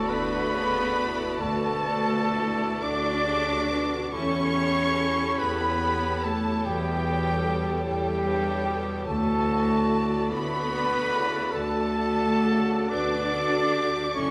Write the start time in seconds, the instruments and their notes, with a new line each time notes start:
Already playing: viola section F#4 A4, clarinet F#4, trumpet A4, violin section D5 A5
0.08 double bass section D2, bassoon D3, cello section B3, french horn section E4, trumpet B4, violin section B5, flute section B5
0.53 bassoon C#3, french horn section D4, viola section F#4 A4, violin section D5 A5
0.97 bassoon B2, french horn section E4
1.39 double bass section D2, cello section A3, clarinet F#4, french horn section F#4, trumpet A4, flute section A5, violin section A5
1.86 french horn section D4, viola section F#4 A4, violin section D5 A5
2.37 french horn section E4
2.82 double bass section D2, bassoon A2, cello section D4, clarinet F#4, french horn section F#4, trumpet D5, violin section D6, flute section D6
3.26 bassoon C#3, viola section F#4 A4, french horn section G4, violin section D5 A5
3.70 bassoon B2, french horn section F#4
4.11 double bass section E2, bassoon A2, cello section C#4, clarinet E4, french horn section E4, viola section G4 A4, trumpet C#5, violin section C#5 A5 C#6, flute section C#6
4.53 bassoon A2, french horn section G4, viola section G4 A4, violin section C#5 A5
4.94 bassoon C#3, french horn section A4
5.37 double bass section E2, cello section B3, french horn section G4, trumpet B4, flute section B5, violin section B5
5.83 viola section G4 A4, violin section C#5 A5
6.24 cello section A3, trumpet A4, violin section A5, flute section A5
6.64 double bass section E2, bassoon B2, cello section G3, french horn section E4, trumpet G4, flute section G5, violin section G5
7.05 viola section G4 A4, french horn section A4, violin section C#5 A5
7.46 french horn section G4
7.84 double bass section E2, bassoon A2, cello section G3, trumpet G4, flute section G5, violin section G5
8.25 bassoon G2, viola section G4 A4, violin section C#5 A5
8.67 bassoon B2
9.06 double bass section D2, bassoon A2, cello section A3, french horn section F#4, clarinet F#4, trumpet A4, violin section A5, flute section A5
9.49 viola section F#4 A4, violin section D5 A5
10.30 double bass section D2, bassoon A2, cello section B3, french horn section E4, clarinet F#4, trumpet B4, violin section B5, flute section B5
10.71 bassoon B2, french horn section D4, viola section F#4 A4, violin section D5 A5
11.12 bassoon C#3, french horn section E4
11.52 double bass section D2, bassoon D3, cello section A3, french horn section F#4, trumpet A4, clarinet A4, violin section A5, flute section A5
11.97 bassoon D3, viola section F#4 A4, violin section D5 A5
12.46 bassoon C#3
12.90 double bass section D2, bassoon B2, cello section D4, clarinet B4, trumpet D5, violin section D6, flute section D6
13.32 viola section F#4 A4, clarinet A4, violin section D5 A5
13.73 clarinet G4
14.14 double bass section F#1, bassoon A2, cello section C#4, french horn section E4, clarinet F#4, viola section F#4 A4, trumpet C#5, violin section D5 A5 C#6, flute section C#6